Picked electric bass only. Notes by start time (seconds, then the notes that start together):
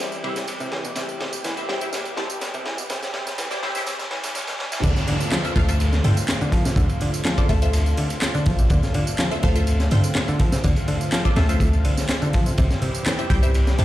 Already playing: G3
0.23 C3
0.60 C3
0.72 E3
0.85 B2
0.96 C3
1.20 C3
1.45 E3
1.69 G3
2.17 C3
2.54 C3
2.66 E3
2.79 B2
2.90 C3
3.14 C3
3.38 E3
3.63 G3
4.11 E3
4.24 E3
4.48 B2
4.59 B2
4.72 E3
4.84 D3
5.08 D3
5.32 F3
5.56 A3
6.04 D3
6.41 D3
6.53 F3
6.65 C3
6.77 D3
7.02 D3
7.26 F3
7.49 A3
7.98 D3
8.35 D3
8.47 F3
8.59 C3
8.71 D3
8.95 D3
9.19 F3
9.44 A3
9.92 D3
10.29 D3
10.40 F3
10.53 C3
10.64 D3
10.88 D3
11.13 F3
11.37 A3
11.85 D3
12.22 D3
12.34 F3
12.46 C3
12.58 C3
12.82 C3
13.06 E3
13.30 G3
13.79 C3